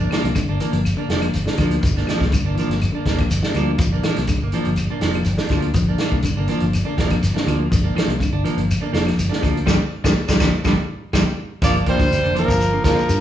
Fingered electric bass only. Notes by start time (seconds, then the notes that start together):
0.13 muted fingered electric bass stroke
0.24 C2
0.49 G1
0.73 G1
1.09 F1
1.34 G1
1.58 D2
1.83 G1
2.07 muted fingered electric bass stroke
2.20 C2
2.45 G1
2.69 G1
3.05 F1
3.30 G1
3.54 D2
3.79 G1
4.18 C2
4.42 G1
4.66 G1
5.02 F1
5.27 G1
5.50 D2
5.74 G1
6.12 C2
6.37 G1
6.62 G1
6.98 F1
7.22 G1
7.46 D2
7.72 G1
7.96 muted fingered electric bass stroke
8.08 C2
8.33 G1
8.57 G1
8.94 F1
9.17 G1
9.43 D2
9.67 G1
10.04 G1
10.29 G1
10.40 G1
10.65 G1
11.13 G1
11.62 G1
12.00 D2
12.24 F1
12.48 G1
12.84 D2
13.09 G2